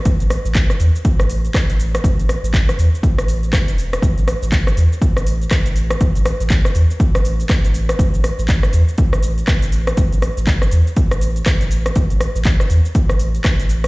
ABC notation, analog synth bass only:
X:1
M:4/4
L:1/16
Q:"Swing 16ths" 1/4=121
K:Clyd
V:1 name="Analog synth bass" clef=bass
A,,,2 z A,,,2 z E,, z2 A,,,2 z2 A,,,2 z | A,,,2 z A,,,2 z E,, z2 A,,,4 E,,,2 z | A,,,2 z A,,,2 z E,, z2 A,,,2 z2 A,,,2 z | A,,,2 z A,,,2 z E,, z2 A,,,2 z2 A,,,2 z |
A,,,2 z A,,,2 z E,, z2 A,,,2 z2 A,,,2 z | A,,,2 z A,,,2 z E,, z2 A,,,2 z2 A,,,2 z | A,,,2 z A,,,2 z E,, z2 A,,,2 z2 A,,,2 z |]